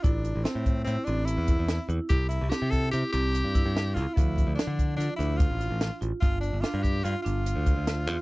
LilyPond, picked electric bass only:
\new Staff \with { instrumentName = "Picked electric bass" } { \clef bass \time 5/4 \key a \phrygian \tempo 4 = 146 a,,8. a,,16 r16 a,8. a,16 r16 a,,8. e,8 e,8 r16 e,16 r16 | c,8. c,16 r16 c8. c16 r16 c,8. g,8 g,8. cis,16 r16 | d,8. d,16 r16 d8. d16 r16 d,8. a,,8 a,,8 r16 a,,16 r16 | g,,8. g,,16 r16 g,8. g,16 r16 g,,8. d,8 d,8. e,16 r16 | }